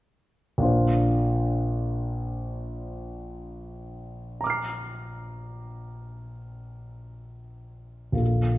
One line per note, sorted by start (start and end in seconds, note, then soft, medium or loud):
0.58 8.11 A#1 soft
0.58 8.12 A#3 soft
0.58 8.13 D4 soft
0.62 8.14 F4 soft
0.62 8.15 C5 soft
4.41 8.17 A#5 soft
4.41 8.18 D6 soft
4.47 8.20 F6 soft
4.47 8.21 C7 soft
8.12 8.58 A#1 soft
8.12 8.58 A#3 soft
8.12 8.58 F4 soft
8.17 8.58 A4 soft